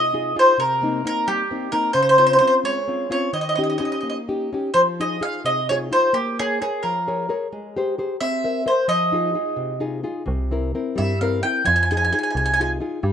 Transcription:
Already playing: C3 D#5
0.13 D#4 F4 G#4
0.36 D#4 F4 G#4 C5
0.58 C3 A#4
0.82 A#3 C4 D#4
1.05 A#3 C4 D#4 A#4
1.28 G3 G4
1.51 A#3 C4 D#4
1.72 A#3 C4 D#4 A#4
1.93 C#3 C5
2.02 C5
2.09 C5
2.18 C4 C#4 F4 C5
2.26 C5
2.33 C5
2.39 C4 C#4 F4 C5
2.47 C5
2.64 G#3 C#5
2.88 C4 C#4 F4
3.10 C4 C#4 F4 C#5
3.33 D#3 D#5
3.41 D#5
3.49 D#5
3.55 C#4 D#4 G4 D#5
3.63 D#5
3.70 D#5
3.78 C#4 D#4 G4 D#5
3.85 D#5
3.92 D#5
4.01 A#3 D#5
4.10 D#5
4.29 C#4 D#4 G4
4.53 C#4 D#4 G4
4.74 F3 C5
5.00 D#4 F4 G#4 D#5
5.20 D#4 F4 G#4 F5
5.44 C3 D#5
5.69 D#4 F4 G#4 C#5
5.91 D#4 F4 G#4 C5
6.13 A#3 G4
6.39 G#4 A#4 C#5
6.61 G#4 A#4 C#5
6.83 F3 A#4
7.08 G#4 A#4 C#5
7.29 G#4 A#4 C#5
7.52 G#3
7.76 G4 G#4 C5
7.98 G4 G#4 C5
8.20 C4 E5
8.44 A#4 C5 E5
8.66 A#4 C5 E5
8.88 F3 D#5
9.12 D#4 F4 G#4
9.34 D#4 F4 G#4
9.56 C3
9.80 D#4 F4 G#4
10.03 D#4 F4 G#4
10.26 C2 C3
10.51 C4 E4 A#4
10.75 C4 E4 A#4
10.96 G2 G3 E5
11.21 C4 E4 A#4 F5
11.43 C4 E4 A#4 G5
11.65 F2 F3 G#5
11.76 G#5
11.83 G#5
11.91 D#4 F4 G#4 G#5
11.97 G#5
12.04 G#5
12.12 D#4 F4 G#4 G#5
12.19 G#5
12.23 G#5
12.30 G#5
12.34 C2 C3 G#5
12.46 G#5
12.54 G#5
12.60 D#4 F4 G#4 G#5
12.80 D#4 F4 G#4
13.03 G2 G3

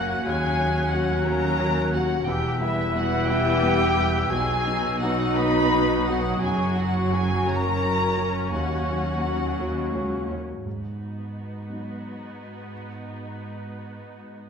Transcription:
Already playing: F#1 F#2 A#3 C#4 F#4 F#5 F#6
0.25 D#2 F#3 C#4 G#4 C#5 G#5
0.59 F#3 C#4 F#4
0.93 F#3 C#4 F#4 F#5
1.26 F#3 C#4 F#4 A#4 A#5
1.59 F#3 C#4 F#4
1.93 F#3 C#4 F#4 F#5
2.26 E1 E2 E3 B3 E4 G4 B4 G5 E6
2.60 G3 B3 E4 E5
2.95 G3 B3 E4 F#4 F#5
3.28 G3 B3 E4 G4 G5
3.62 G3 B3 E4
3.96 G3 B3 E4
4.29 B1 B2 F#3 D#4 F#4 G#4 G#5
4.66 F#3 B3 D#4
5.01 F#3 B3 D#4 F#4 F#5
5.38 F#3 B3 D#4 B4 B5 D#6
5.74 F#3 B3 D#4
6.08 F#3 B3 D#4 F#4 F#5
6.42 F#1 F#2 C#4 G#4 G#5 C#6
6.76 F#3 C#4 F#4 F#5
7.10 F#3 C#4 F#4 G#4 G#5
7.46 F#3 C#4 F#4 A#4 A#5
7.82 F#3 C#4 F#4
8.17 F#3 C#4 F#4
8.50 D#2 F#3 F#4 F#5
8.89 F#3 C#4 F#4
9.25 F#3 C#4 F#4
9.59 D#2 F#3 C#4 F#4
9.94 C#2 F#3 C#4 F#4
10.30 D#2 F#3 C#4 F#4
10.65 G#2 B3 D#4 F#4
11.69 F#3 B3 D#4

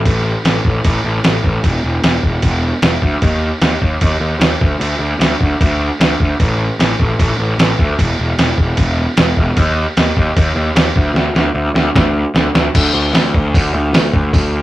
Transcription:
0.05 A1, kick, crash
0.45 A1, snare, crash
0.65 A1, kick
0.85 A1, kick, crash
1.04 A1
1.24 A1, snare, crash
1.44 A1, kick
1.64 E1, kick, crash
1.84 E1
2.04 E1, snare, crash
2.23 E1, kick
2.42 E1, kick, crash
2.82 E1, snare, crash
3.02 D2, kick
3.22 D#2, kick, crash
3.62 D#2, snare, crash
3.82 D#2, kick
4.01 D#2, kick, crash
4.20 D#2
4.40 D#2, snare, crash
4.61 D2, kick
4.80 D2, crash
4.99 D2
5.19 D2, snare, crash
5.41 D2, kick
5.61 D2, kick, crash
6.00 D2, snare, crash
6.20 D2, kick
6.40 A1, kick, crash
6.79 A1, snare, crash
7.00 A1, kick
7.19 A1, kick, crash
7.38 A1
7.58 A1, snare, crash
7.79 D2, kick
7.99 E1, kick, crash
8.19 E1
8.38 E1, snare, crash
8.58 E1, kick
8.77 E1, kick, crash
9.17 E1, snare, crash
9.37 E1, kick
9.57 D#2, kick, crash
9.97 D#2, snare, crash
10.17 D#2, kick
10.37 D#2, kick, crash
10.56 D#2
10.75 D#2, snare, crash
10.96 D2, kick
11.14 D2, snare
11.35 D2, snare
11.55 D2
11.74 D2, snare
11.95 D2, kick, snare
12.35 D2, snare
12.55 D2, snare
12.75 D2, kick, open hi-hat, crash
12.94 D2
13.13 D2, snare, open hi-hat
13.34 D2, kick
13.54 D2, kick, open hi-hat
13.74 D2
13.93 D2, snare, open hi-hat
14.13 D2, kick
14.33 D2, kick, open hi-hat

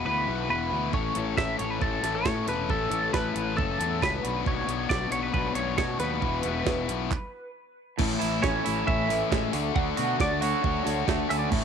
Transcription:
0.05 D2 E3 B3 E4 F#4 B4
0.27 B1 E2 B2 E3 B3 E4 F#4
0.48 E1 E3 B3 E4 F#4 B4
0.71 D2 E3 B3 E4 F#4
0.91 A1 A2 E3 A3 C#4 A4 C#5, kick
1.14 A1 A3 C#4 A4, closed hi-hat
1.36 A1 A2 E3 A3 C#4 A4 E5, kick, snare
1.59 A1 A3 C#4 A4 C#5, closed hi-hat
1.71 B4
1.81 A1 E3 A3 C#4 A4, kick
2.03 A1 A2 E3 A3 C#4 A4, snare, closed hi-hat
2.15 C#5
2.25 A2 E3 A3 C#4 A4, kick, snare
2.47 E1 A3 C#4 A4 B4, snare, closed hi-hat
2.68 A1 A2 E3 A3 C#4 A4, kick
2.90 A1 A3 C#4 A4, closed hi-hat
3.13 A1 A2 E3 A3 C#4 A4 B4, kick, snare
3.34 A1 A3 C#4 A4, closed hi-hat
3.56 F#1 E3 A3 C#4 A4, kick
3.79 E2 A2 E3 A3 C#4 A4, closed hi-hat
4.01 C#2 E3 A3 C#4 A4 B4, kick, snare
4.23 B1 B2 F#3 B3 D4 F#4, closed hi-hat
4.44 B1 B2 F#3 B3 D4 F#4 C#5, kick
4.67 B1 B3 D4 F#4, closed hi-hat
4.89 B1 B2 F#3 B3 D4 F#4 D5, kick, snare
5.10 B1 B3 D4 F#4 C#5, closed hi-hat
5.23 B4
5.32 B1 F#3 B3 D4 F#4 B4, kick
5.54 B1 B2 F#3 B3 D4 F#4 C#5, closed hi-hat
5.77 B2 F#3 B3 D4 F#4 C#5, kick, snare
5.99 D#2 B3 D4 F#4 B4, snare, closed hi-hat
6.21 E1 E2 B2 E3 B3 E4 F#4, kick
6.42 E1 E3 B3 E4 F#4, closed hi-hat
6.64 E1 E2 B2 E3 B3 E4 F#4, kick, snare
6.88 B1 E3 B3 E4 F#4, closed hi-hat
7.11 kick, clap
7.98 A1 A2 E3 A3 C#4 E4 A4 E5 G#5 C#6, kick, crash
8.21 A1 A3 C#4 E4, open hi-hat
8.43 A1 E3 A3 C#4 E4 C#5, kick, snare
8.64 A1 A2 E3 A3 C#4 E4, open hi-hat
8.86 A1 E3 A3 C#4 E4 E5, kick
9.08 A2 E3 A3 C#4 E4, open hi-hat
9.30 A1 E3 G#3 A3 C#4 E4, kick, snare
9.51 D2 D4 F#4 F#5, open hi-hat
9.55 D3 A3
9.75 D2 D3 A3 D4 F#4 F#5, kick
9.97 B2 D4 F#4, open hi-hat
10.02 A3
10.19 D2 D3 A3 D4 F#4 D5, kick, snare
10.41 D3 A3 D4 F#4 C#5, open hi-hat
10.63 D2 D3 A3 D4 F#4, kick
10.84 D2 D3 A3 D4 F#4, open hi-hat
11.06 D2 D3 A3 D4 F#4, kick, snare
11.29 D2 A3 C#4 D4 F#4 E5, open hi-hat
11.39 D5
11.49 A1 A2 E3 A3 C#4 E4 A4 C#5 E5 G#5, kick, crash

